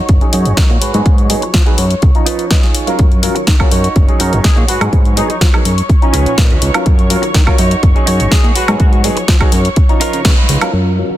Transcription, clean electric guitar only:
0.00 0.24 D#4 medium
0.00 0.24 F#4 medium
0.00 0.24 C#5 medium
0.32 0.51 D#4 loud
0.32 0.52 F#4 loud
0.32 0.52 G#4 loud
0.69 0.80 D#4 medium
0.69 0.80 F#4 medium
0.69 0.82 C#5 medium
0.81 1.29 F#4 medium
0.81 1.30 G#4 medium
0.81 1.30 B4 loud
1.42 muted clean electric guitar stroke loud
1.53 muted clean electric guitar stroke soft
1.66 1.84 F#4 medium
1.66 1.85 G#4 medium
1.66 1.85 B4 medium
2.02 muted clean electric guitar stroke soft
2.26 2.45 D#4 loud
2.26 2.45 F4 loud
2.26 2.45 B4 loud
2.51 2.96 D#5 medium
2.62 2.99 D#4 medium
2.62 2.99 F4 medium
2.62 2.99 G#4 medium
3.35 muted clean electric guitar stroke loud
3.47 muted clean electric guitar stroke soft
3.59 3.70 F4 medium
3.59 3.70 F#4 medium
3.59 3.71 G#4 medium
3.71 4.10 D#4 medium
3.71 4.11 F#4 medium
3.71 4.11 C#5 medium
4.19 4.38 D#4 loud
4.19 4.39 F#4 loud
4.19 4.39 A#4 loud
4.56 4.67 D#4 medium
4.56 4.66 F#4 medium
4.56 4.69 C#5 medium
4.67 5.16 F#4 medium
4.67 5.17 G#4 medium
4.67 5.17 B4 loud
5.29 muted clean electric guitar stroke loud
5.53 5.71 F#4 medium
5.53 5.72 G#4 medium
5.53 5.72 A#4 medium
5.89 muted clean electric guitar stroke soft
6.13 6.32 D#4 loud
6.13 6.32 F4 loud
6.13 6.33 B4 loud
6.13 6.26 G#5 medium
6.26 6.37 F#5 medium
6.38 6.83 D#5 medium
6.50 6.86 D#4 medium
6.50 6.87 F4 medium
6.50 6.87 B4 medium
7.22 muted clean electric guitar stroke loud
7.34 muted clean electric guitar stroke soft
7.46 7.57 F4 medium
7.46 7.57 F#4 medium
7.46 7.58 C#5 loud
7.58 7.97 D#4 medium
7.58 7.98 F#4 medium
7.58 7.98 C#5 loud
8.06 8.25 D#4 loud
8.06 8.26 F#4 loud
8.06 8.26 C#5 loud
8.43 8.54 D#4 medium
8.43 8.54 F#4 medium
8.43 8.55 G#4 loud
8.55 9.04 F#4 loud
8.55 9.04 G#4 medium
8.55 9.04 B4 loud
9.16 muted clean electric guitar stroke loud
9.28 muted clean electric guitar stroke soft
9.40 9.58 F#4 medium
9.40 9.59 G#4 medium
9.40 9.59 C#5 loud
9.76 muted clean electric guitar stroke soft
10.00 10.19 D#4 loud
10.00 10.19 F4 loud
10.00 10.20 A#4 loud
10.25 10.38 C#5 medium
10.37 10.72 D#4 medium
10.37 10.71 F4 medium
10.37 10.74 B4 medium
10.72 10.91 F4 loud
10.72 10.92 F#4 loud
10.72 10.92 A#4 loud
11.09 11.17 F4 medium
11.09 11.17 F#4 medium
11.09 11.17 A#4 medium

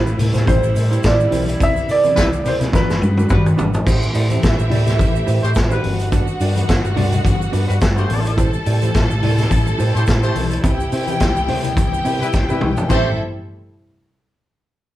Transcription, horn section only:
2.16 2.27 G3 loud
2.16 2.27 E4 loud
2.16 2.27 B4 loud
2.45 2.55 E3 medium
2.45 2.55 C4 medium
2.45 2.55 G4 medium
3.30 3.48 G3 medium
3.30 3.48 F#4 medium
3.30 3.48 B4 loud
5.43 5.51 A3 medium
5.43 5.51 G4 medium
5.43 5.51 C5 medium
5.72 6.10 G3 medium
5.72 6.10 F#4 medium
5.72 6.10 B4 medium
7.69 7.77 G3 medium
7.69 7.77 F#4 medium
7.69 7.77 B4 medium
7.97 8.36 A3 medium
7.97 8.36 G4 medium
7.97 8.36 C5 loud
9.95 10.03 A3 medium
9.95 10.03 G4 medium
9.95 10.03 C5 loud
10.23 10.62 A3 medium
10.23 10.62 G4 medium
10.23 10.62 C5 loud
12.21 12.29 G3 medium
12.21 12.29 E4 medium
12.21 12.29 B4 loud
12.49 12.88 G3 medium
12.49 12.88 E4 medium
12.49 12.88 B4 medium
12.90 13.10 A3 medium
12.90 13.10 G4 medium
12.90 13.10 C5 loud

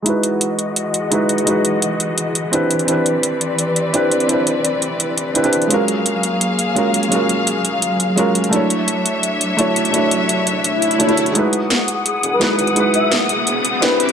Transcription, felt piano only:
0.02 1.08 G#3 medium
0.02 1.09 D#4 medium
0.02 1.10 E4 medium
0.07 1.10 F#4 medium
0.07 1.11 B4 medium
1.10 1.42 G#3 medium
1.10 1.44 D#4 medium
1.10 1.45 E4 medium
1.10 1.45 F#4 medium
1.10 1.46 B4 medium
1.44 2.49 G#3 medium
1.44 2.50 D#4 medium
1.44 2.51 E4 medium
1.49 2.52 F#4 medium
1.49 2.52 B4 medium
2.51 2.83 C4 medium
2.51 2.85 D4 medium
2.51 2.86 E4 medium
2.51 2.86 G4 medium
2.51 2.87 B4 medium
2.85 3.90 C4 medium
2.85 3.91 D4 medium
2.85 3.92 E4 medium
2.90 3.93 G4 medium
2.90 3.94 B4 medium
3.92 4.25 C4 medium
3.92 4.26 D4 medium
3.92 4.27 E4 medium
3.92 4.28 G4 medium
3.92 4.28 B4 medium
4.26 5.32 C4 medium
4.26 5.32 D4 medium
4.26 5.33 E4 medium
4.31 5.34 G4 medium
4.31 5.35 B4 medium
5.34 5.41 C4 medium
5.34 5.41 D4 medium
5.34 5.42 E4 medium
5.34 5.42 G4 medium
5.34 5.43 B4 medium
5.42 5.68 C4 medium
5.42 5.68 D4 medium
5.42 5.68 E4 medium
5.42 5.69 G4 medium
5.42 5.69 B4 medium
5.67 6.73 G#3 medium
5.67 6.73 C#4 medium
5.67 6.74 F4 medium
5.72 6.75 F#4 medium
5.72 6.76 A#4 medium
6.75 7.07 G#3 medium
6.75 7.08 C#4 medium
6.75 7.10 F4 medium
6.75 7.10 F#4 medium
6.75 7.10 A#4 medium
7.08 8.14 G#3 medium
7.08 8.15 C#4 medium
7.08 8.15 F4 medium
7.13 8.16 F#4 medium
7.13 8.17 A#4 medium
8.16 8.50 G#3 medium
8.16 8.50 C#4 medium
8.16 8.51 F4 medium
8.16 8.51 F#4 medium
8.16 8.51 A#4 medium
8.49 9.55 A3 medium
8.49 9.56 D4 medium
8.49 9.56 E4 medium
8.54 9.57 F#4 medium
8.54 9.58 C#5 medium
9.57 9.89 A3 medium
9.57 9.91 D4 medium
9.57 9.92 E4 medium
9.57 9.92 F#4 medium
9.57 9.93 C#5 medium
9.91 10.96 A3 medium
9.91 10.97 D4 medium
9.91 10.98 E4 medium
9.95 10.99 F#4 medium
9.95 10.99 C#5 medium
10.98 11.05 A3 medium
10.98 11.06 D4 medium
10.98 11.07 E4 medium
10.98 11.07 F#4 medium
10.98 11.07 C#5 medium
11.07 11.32 A3 medium
11.07 11.33 D4 medium
11.07 11.33 E4 medium
11.07 11.34 F#4 medium
11.07 11.34 C#5 medium
11.32 12.37 G#3 medium
11.32 12.38 D#4 medium
11.32 12.39 E4 medium
11.37 12.40 F#4 medium
11.37 12.41 B4 medium
12.39 12.71 G#3 medium
12.39 12.73 D#4 medium
12.39 12.74 E4 medium
12.39 12.75 F#4 medium
12.39 12.75 B4 medium
12.73 13.78 G#3 medium
12.73 13.79 D#4 medium
12.73 13.80 E4 medium
12.78 13.81 F#4 medium
12.78 13.82 B4 medium
13.80 14.12 C4 medium
13.80 14.12 D4 medium
13.80 14.12 E4 medium
13.80 14.12 G4 medium
13.80 14.12 B4 medium

